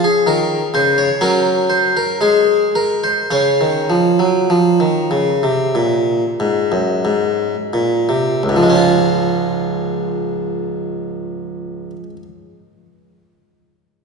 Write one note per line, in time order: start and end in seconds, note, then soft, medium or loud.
0.00 1.16 C#4 soft
0.04 0.27 G#4 medium
0.27 0.60 D#3 medium
0.27 0.66 A#4 medium
0.74 1.07 C#3 medium
0.74 0.97 C5 medium
0.98 1.21 C#5 medium
1.21 1.93 F#3 medium
1.21 2.17 C#4 soft
1.21 1.63 A#4 medium
1.70 1.95 C5 medium
1.97 2.21 A#4 medium
2.21 3.01 G#3 medium
2.21 2.67 G#4 medium
2.75 3.03 A#4 medium
3.04 3.32 C5 medium
3.31 3.59 C#3 medium
3.31 8.38 C#4 soft
3.31 7.07 C#5 medium
3.61 3.89 D#3 soft
3.90 4.18 F3 soft
4.19 4.48 F#3 soft
4.50 4.79 F3 medium
4.80 5.10 D#3 soft
5.11 5.41 C#3 soft
5.43 5.73 C3 soft
5.75 6.21 A#2 medium
6.40 6.71 G#2 soft
6.72 7.03 F#2 soft
7.05 7.54 G#2 soft
7.73 8.07 A#2 soft
8.09 8.41 C3 soft
8.43 11.90 C#2 soft
8.49 11.96 G#2 soft
8.56 12.03 F3 soft
8.63 12.10 G#3 soft
8.69 12.16 C#4 soft
8.76 12.23 F4 soft